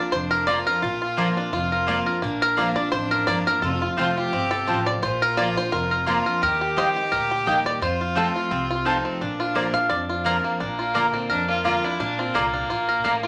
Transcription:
Already playing: A#2 A#3 D4 F4 D5
0.00 D4
0.12 F1 F2 C5
0.31 A#4
0.46 F3 A#3 D4 F4 D5 A#5
0.67 D4 F4 A#4
0.82 A#1 A#2 F4
1.02 F4
1.17 F3 A#3 D4 F4 D5 A#5
1.36 D4 F4
1.53 F1 F2 F4
1.72 A#4
1.87 F3 A#3 D4 F4 D5 A#5
2.06 D4 F4 A#4
2.22 A#1 A#2 A#3 D4
2.42 A#4
2.57 F3 A#3 D4 F4 D5 A#5
2.76 F4 D5
2.80 D4
2.92 A1 F2 C5
3.11 A#4
3.27 G1 F3 A#3 D4 F4 D5 A#5
3.47 A#4
3.62 F1 F2 F4 A4
3.82 F4
3.97 F1 F3 A3 C4 F4 C5 A5
4.17 F4 G4
4.32 G1 C3 C4
4.51 A4
4.67 A1 F3 A3 C4 F4 C5 A5
4.86 D5
5.02 A#1 A#2 F4 C5
5.22 A#4
5.37 F3 A#3 D4 F4 D5 A#5
5.56 D4 F4 C5
5.72 F1 F2 A#4
5.91 A#4
6.06 F3 A#3 D4 F4 D5 A#5
6.26 D4 F4 A#4
6.41 D#2 D#3 G4 A#4
6.61 G4
6.77 G3 A#3 D#4 G4 C5 D#5 G5
6.96 D#4 G4
7.12 D2 A#2 A#4
7.31 G4
7.46 D#2 G3 A#3 D#4 G4 D#5 G5
7.66 D5
7.81 F2 F4 C5
8.01 F4
8.15 F3 A3 C4 F4 A4 C5 A5
8.36 F4
8.51 C2 C3 C4
8.71 F4
8.85 F3 A3 C4 D#4 F4 C5 A5
9.05 C4
9.21 A#1 A#2 D4
9.40 F4
9.55 F3 A#3 D4 F4 D5 A#5
9.74 D4 F4 F5
9.90 F2 D5
10.09 F4
10.24 F3 A#3 D4 F4 A#4 D5 A#5
10.44 A#3
10.60 A#1 A#2 A#3 D4
10.79 F4
10.94 D3 A#3 D4 F4 A#4 D5 A#5
11.14 A#3 C4
11.30 F2 D4 A#4
11.48 A#3 F4
11.64 D3 A#3 D4 F4 D5 A#5
11.83 D4 E4 F4
11.99 A#1 A#2 A#3 D4
12.19 C4 F4
12.34 C2 D3 A#3 D4 F4 A#4 D5 A#5
12.54 D4 F4
12.70 A#1 A#2 F4
12.89 A#4
13.04 A1 A2 A#3 F4 D5 A#5
13.23 F4

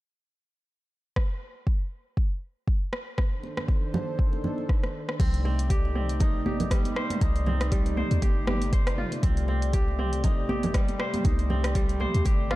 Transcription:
1.16 kick, cross-stick
1.67 kick
2.17 kick
2.68 kick
2.93 cross-stick
3.18 D#3 D4 A4 C5, kick, cross-stick, muted conga
3.43 muted conga
3.57 cross-stick, high conga
3.68 kick, muted conga
3.94 muted conga, high conga, low conga
4.19 kick
4.33 muted conga
4.44 high conga, low conga
4.58 muted conga
4.69 kick, cross-stick
4.83 cross-stick, muted conga
5.09 cross-stick
5.20 C2 C3 A3 C4 D#4 D5, kick, closed hi-hat, crash, low conga
5.34 closed hi-hat
5.45 C4, muted conga
5.59 closed hi-hat
5.70 G4, kick, closed hi-hat
5.85 muted conga
5.95 C4, mid tom
6.09 closed hi-hat
6.20 A1 D#4, kick, closed hi-hat, muted conga, low conga
6.46 G4, high conga
6.60 closed hi-hat, muted conga, low conga
6.71 G3, kick, cross-stick, closed hi-hat, high conga
6.85 closed hi-hat, high conga
6.96 C5, cross-stick
7.10 closed hi-hat, mid tom, muted conga, high conga
7.21 C2 D#4, kick, closed hi-hat, low conga
7.36 closed hi-hat
7.46 C4, muted conga, low conga
7.61 cross-stick, closed hi-hat
7.72 G3, kick, closed hi-hat
7.86 closed hi-hat, muted conga
7.97 C5, mid tom, high conga
8.11 D#2, closed hi-hat
8.22 G1 G4, kick, closed hi-hat, muted conga, high conga
8.47 G4, cross-stick, mid tom, high conga
8.61 closed hi-hat, muted conga
8.73 C5, kick, closed hi-hat
8.87 cross-stick, closed hi-hat
8.98 F4, mid tom
9.12 closed hi-hat, muted conga
9.23 C2 C4 G4, kick, closed hi-hat, low conga
9.37 closed hi-hat
9.48 C4, muted conga
9.62 closed hi-hat
9.73 G4, kick, closed hi-hat
9.88 muted conga
9.99 C4, mid tom
10.13 closed hi-hat
10.24 A1 D#4, kick, closed hi-hat, muted conga, low conga
10.49 G4, high conga
10.63 closed hi-hat, muted conga, low conga
10.74 G3, kick, cross-stick, closed hi-hat, high conga
10.88 closed hi-hat, high conga
11.00 C5, cross-stick
11.14 closed hi-hat, mid tom, muted conga, high conga
11.24 C2 D#4, kick, closed hi-hat, low conga
11.39 closed hi-hat
11.50 C4, muted conga, low conga
11.64 cross-stick, closed hi-hat
11.75 G3, kick, closed hi-hat
11.89 closed hi-hat, muted conga
12.00 C5, mid tom, high conga
12.14 D#2, closed hi-hat
12.25 G1 G4, kick, closed hi-hat, muted conga, high conga
12.51 F4, cross-stick, mid tom, high conga

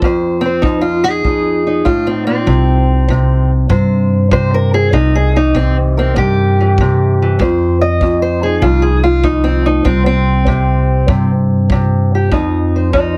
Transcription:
0.02 F2 C5, kick
0.41 C4
0.46 C5
0.62 F2 D#4, kick
0.81 F4
1.04 G#4
1.08 D#4
1.25 F2 D#4, kick
1.67 D#4
1.85 A2 F4, kick
2.07 C4
2.27 A#2 C4
2.47 C2 C3, kick
3.09 C3, kick
3.69 G2 C3 C5, kick
4.31 C3 C5, kick
4.54 A#4
4.74 E4 G#4
4.92 C2 C3 D#4, kick
5.15 G#4
5.36 E3 D#4
5.54 C3 C4, kick
5.97 C4 A#4
6.16 G2 C3 G4, kick
6.61 E3
6.78 C3, kick
7.22 E3
7.39 F2 C5, kick
7.81 D#5
8.01 F2, kick
8.22 C5
8.43 D#4 G#4
8.62 C2 F2 F4, kick
8.82 G#4
9.04 F4
9.24 F2 D#4, kick
9.44 C4
9.66 A3 D#4
9.85 C2 C3 C4, kick
10.06 C4
10.47 C3, kick
11.08 G2 C3, kick
11.70 C3, kick
12.15 G4
12.32 F2 D#4, kick
12.76 C5
12.93 F2 D#4, kick

